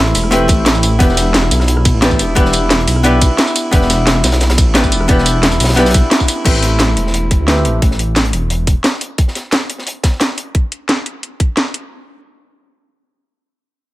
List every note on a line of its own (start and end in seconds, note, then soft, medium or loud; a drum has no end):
0.00 0.14 A1 loud
0.00 0.29 A3 medium
0.00 0.30 C4 medium
0.00 0.30 E4 medium
0.00 0.30 G4 medium
0.00 0.30 B4 loud
0.06 cross-stick soft
0.06 closed hi-hat soft
0.15 0.50 E1 medium
0.15 closed hi-hat medium
0.15 open hi-hat medium
0.15 ride medium
0.15 tambourine medium
0.24 cross-stick soft
0.31 0.97 A3 medium
0.31 0.98 C4 medium
0.31 0.98 E4 medium
0.31 0.98 G4 medium
0.31 0.99 B4 loud
0.31 closed hi-hat medium
0.31 closed hi-hat loud
0.48 0.99 A1 medium
0.48 kick loud
0.48 closed hi-hat medium
0.48 ride medium
0.48 tambourine medium
0.66 snare loud
0.66 closed hi-hat loud
0.66 closed hi-hat medium
0.75 tambourine soft
0.83 closed hi-hat medium
0.83 ride medium
0.83 tambourine medium
0.99 1.50 E1 loud
0.99 2.00 B3 medium
0.99 2.00 D4 medium
0.99 2.00 E4 medium
0.99 2.01 G4 medium
0.99 2.01 B4 medium
0.99 kick loud
0.99 closed hi-hat medium
1.09 snare soft
1.17 snare medium
1.17 closed hi-hat medium
1.17 ride medium
1.17 tambourine medium
1.34 snare loud
1.34 closed hi-hat medium
1.43 cross-stick soft
1.51 1.93 B1 medium
1.51 closed hi-hat medium
1.51 ride medium
1.51 tambourine medium
1.60 cross-stick soft
1.60 snare soft
1.68 closed hi-hat loud
1.68 closed hi-hat medium
1.77 cross-stick soft
1.85 kick loud
1.85 closed hi-hat medium
1.85 ride medium
1.85 tambourine medium
1.94 2.21 A1 medium
2.02 2.34 B3 medium
2.02 2.34 D4 medium
2.02 2.35 E4 medium
2.02 2.35 G4 medium
2.02 2.35 B4 medium
2.02 snare loud
2.02 closed hi-hat loud
2.02 closed hi-hat medium
2.11 kick medium
2.11 tambourine soft
2.19 2.35 E1 medium
2.19 closed hi-hat medium
2.19 ride medium
2.19 tambourine medium
2.35 2.86 E1 loud
2.35 3.02 B3 medium
2.35 3.02 D4 medium
2.35 3.03 E4 medium
2.35 3.03 G4 medium
2.35 3.03 B4 loud
2.35 kick loud
2.35 closed hi-hat medium
2.45 snare medium
2.53 closed hi-hat medium
2.53 ride medium
2.53 tambourine medium
2.70 snare loud
2.70 closed hi-hat medium
2.79 cross-stick soft
2.79 closed hi-hat soft
2.87 3.29 B1 medium
2.87 closed hi-hat medium
2.87 open hi-hat medium
2.87 ride medium
2.87 tambourine medium
2.96 cross-stick soft
3.03 3.70 B3 medium
3.03 3.71 D4 medium
3.03 3.71 E4 medium
3.03 3.71 G4 medium
3.03 3.72 B4 loud
3.03 closed hi-hat medium
3.21 kick loud
3.21 closed hi-hat medium
3.21 ride medium
3.21 tambourine medium
3.38 snare loud
3.38 closed hi-hat medium
3.47 tambourine soft
3.55 closed hi-hat medium
3.55 ride medium
3.55 tambourine medium
3.71 4.23 E1 loud
3.71 4.72 B3 medium
3.71 4.73 D4 medium
3.71 4.73 E4 medium
3.71 4.73 G4 medium
3.71 4.74 B4 medium
3.71 kick loud
3.71 closed hi-hat medium
3.71 closed hi-hat loud
3.81 snare soft
3.90 snare medium
3.90 closed hi-hat medium
3.90 closed hi-hat loud
3.90 ride medium
3.90 tambourine medium
4.07 snare loud
4.07 closed hi-hat medium
4.15 cross-stick soft
4.24 4.65 B1 medium
4.24 snare loud
4.24 closed hi-hat medium
4.24 ride medium
4.24 tambourine medium
4.32 cross-stick soft
4.32 snare loud
4.32 closed hi-hat medium
4.40 snare loud
4.40 closed hi-hat medium
4.50 cross-stick soft
4.50 snare loud
4.50 closed hi-hat medium
4.58 kick loud
4.58 closed hi-hat medium
4.58 closed hi-hat loud
4.58 ride medium
4.58 tambourine medium
4.67 4.94 A1 medium
4.74 5.07 B3 medium
4.74 5.07 D4 medium
4.74 5.07 E4 medium
4.74 5.07 G4 medium
4.74 5.07 B4 medium
4.74 snare loud
4.74 closed hi-hat loud
4.74 closed hi-hat medium
4.84 kick medium
4.84 tambourine soft
4.92 5.07 E1 medium
4.92 closed hi-hat loud
4.92 ride medium
4.92 tambourine medium
5.01 cross-stick soft
5.08 5.59 E1 loud
5.08 5.75 B3 medium
5.08 5.75 D4 medium
5.08 5.75 E4 medium
5.08 5.76 G4 medium
5.08 5.76 B4 loud
5.08 kick loud
5.08 closed hi-hat loud
5.08 closed hi-hat medium
5.18 snare soft
5.26 closed hi-hat loud
5.26 closed hi-hat medium
5.26 ride medium
5.26 tambourine medium
5.43 snare loud
5.43 closed hi-hat medium
5.51 cross-stick soft
5.51 closed hi-hat soft
5.51 tambourine soft
5.60 6.02 B1 medium
5.60 snare medium
5.60 closed hi-hat medium
5.60 open hi-hat medium
5.60 ride medium
5.60 tambourine medium
5.65 closed hi-hat medium
5.69 cross-stick soft
5.69 snare loud
5.69 closed hi-hat medium
5.73 6.43 B3 medium
5.73 snare medium
5.73 closed hi-hat medium
5.77 6.43 D4 medium
5.77 6.44 E4 medium
5.77 6.44 G4 medium
5.77 6.44 B4 loud
5.77 snare loud
5.77 closed hi-hat medium
5.85 snare medium
5.85 closed hi-hat medium
5.85 tambourine soft
5.90 snare medium
5.90 closed hi-hat medium
5.94 kick loud
5.94 closed hi-hat loud
5.94 closed hi-hat medium
5.94 ride medium
5.94 tambourine medium
6.11 snare loud
6.11 closed hi-hat medium
6.20 kick medium
6.20 tambourine soft
6.28 closed hi-hat medium
6.28 closed hi-hat loud
6.28 ride medium
6.28 tambourine medium
6.44 6.96 A1 loud
6.44 7.45 A3 medium
6.44 7.46 C4 medium
6.44 7.46 E4 medium
6.44 7.46 G4 medium
6.44 7.47 B4 medium
6.44 kick loud
6.44 closed hi-hat medium
6.44 crash medium
6.55 snare soft
6.63 snare soft
6.63 closed hi-hat medium
6.79 snare loud
6.79 closed hi-hat medium
6.97 7.38 E1 medium
6.97 closed hi-hat medium
7.07 snare soft
7.14 closed hi-hat medium
7.31 kick loud
7.31 closed hi-hat loud
7.31 closed hi-hat medium
7.40 7.67 D2 medium
7.47 7.80 A3 medium
7.47 7.80 C4 medium
7.47 7.80 E4 medium
7.47 7.80 G4 medium
7.47 7.81 B4 medium
7.47 snare loud
7.47 closed hi-hat medium
7.65 7.80 A1 medium
7.65 closed hi-hat medium
7.82 8.32 A1 loud
7.82 kick loud
7.82 closed hi-hat medium
7.91 snare soft
7.99 closed hi-hat medium
8.16 snare loud
8.16 closed hi-hat medium
8.25 closed hi-hat soft
8.33 8.75 E1 medium
8.33 closed hi-hat medium
8.50 closed hi-hat medium
8.67 kick loud
8.67 closed hi-hat medium
8.84 snare loud
8.84 closed hi-hat medium
9.01 closed hi-hat medium
9.18 kick loud
9.18 closed hi-hat medium
9.28 snare soft
9.35 snare soft
9.35 closed hi-hat medium
9.52 snare loud
9.52 closed hi-hat medium
9.70 closed hi-hat medium
9.78 snare soft
9.87 closed hi-hat medium
10.03 kick loud
10.03 snare loud
10.03 closed hi-hat medium
10.20 snare loud
10.20 closed hi-hat medium
10.37 closed hi-hat medium
10.55 kick loud
10.55 closed hi-hat medium
10.72 closed hi-hat medium
10.89 snare loud
10.89 closed hi-hat medium
11.06 closed hi-hat medium
11.23 closed hi-hat medium
11.40 kick loud
11.40 closed hi-hat medium
11.57 snare loud
11.57 closed hi-hat medium
11.74 closed hi-hat medium